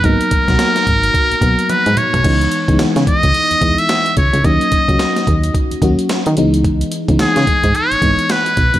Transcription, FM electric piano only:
X:1
M:4/4
L:1/16
Q:"Swing 16ths" 1/4=109
K:C#dor
V:1 name="FM electric piano"
[F,A,B,D]2 z [F,A,B,F]6 z [F,A,B,F]4- [F,A,B,F] z | [E,G,B,D]2 z [E,G,B,D]6 z [E,G,B,E]4- [E,G,B,E] z | [F,A,CD]2 z [F,A,CF]6 z [F,A,CF]4 [E,G,B,D]2- | [E,G,B,D]2 z [E,G,B,D]6 z [E,G,B,D]4- [E,G,B,D] z |]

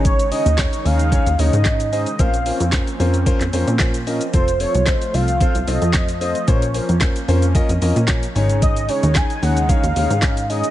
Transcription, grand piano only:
X:1
M:4/4
L:1/16
Q:1/4=112
K:Bbm
V:1 name="Grand piano"
[DEAd]2 [DEAd] z [DEAd] z [DEAd] z [DEAd] z [DEAd] z [DEAd] z [DEAc] z | [DFBc] z [DFBc] z [DFBc] z [DFBc] z [DFBc] z [DFBc] z [DFBc] z [DFBe] z | [CF=Ac] z [CFAc] z [CFAe] z [CFAc] z [CFAc] z [CFAc] z [CFAe] z [CFAc] z | [DFBc] z [DFBc] z [DFBc] z [DFBc] z [DFBe] z [DFBe] z [DFBd] z [DEAd]2- |
[DEAd]2 [DEAd] z [DEAd] z [DEAd] z [DEAd] z [DEAd] z [DEAd] z [DEAd] z |]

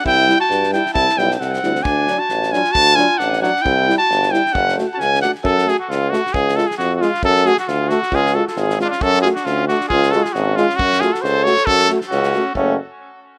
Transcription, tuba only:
X:1
M:2/4
L:1/8
Q:"Swing 16ths" 1/4=134
K:none
V:1 name="Tuba" clef=bass
C,,2 G,,2 | C,, B,,, C,, D,, | D,,2 A,,,2 | D,,2 A,,,2 |
C,,2 G,,,2 | ^F,,,2 ^C,,2 | ^F,,2 ^C,,2 | ^C,,2 ^E,,2 |
^F,,2 D,,2 | ^C,,2 ^G,,,2 | ^F,,2 D,,2 | ^C,,2 ^G,,,2 |
^F,,2 ^C,,2 | ^F,,2 ^C,,2 | ^F,,, z3 |]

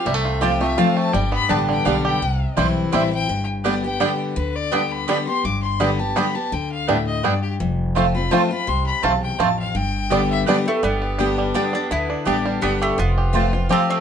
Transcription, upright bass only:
X:1
M:3/4
L:1/8
Q:1/4=167
K:Gmix
V:1 name="Upright bass" clef=bass
C,,6 | G,,,2 A,,,2 B,,,2 | C,,2 B,,,2 A,,,2 | G,,,6 |
D,,6 | G,,,6 | D,,6 | F,,,6 |
C,,2 B,,,2 A,,,2 | G,,,6 | G,,,6 | D,,2 A,,,2 G,,,2 |
F,,,6 |]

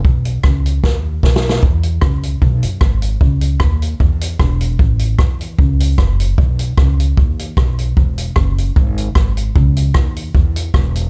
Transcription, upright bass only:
X:1
M:4/4
L:1/8
Q:"Swing" 1/4=151
K:E
V:1 name="Upright bass" clef=bass
B,,,2 C,,2 D,,2 B,,,2 | E,,2 C,,2 B,,, F,, G,,,2 | C,,2 D,,2 E,,2 E,,,2 | A,,,2 E,,2 C,,2 F,,,2 |
B,,,2 C,,2 D,,2 B,,,2 | E,,,2 F,,,2 G,,,2 G,,,2 | C,,2 D,,2 E,,2 E,,,2 |]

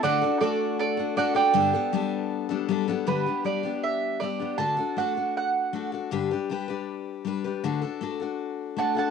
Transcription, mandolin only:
X:1
M:4/4
L:1/8
Q:1/4=158
K:G
V:1 name="Mandolin"
[df]2 [Ad]2 [Ad]2 [df] [dg]- | [dg]6 z2 | B2 d2 e2 d2 | a2 f2 f3 z |
z8 | z6 [fa] [fa] |]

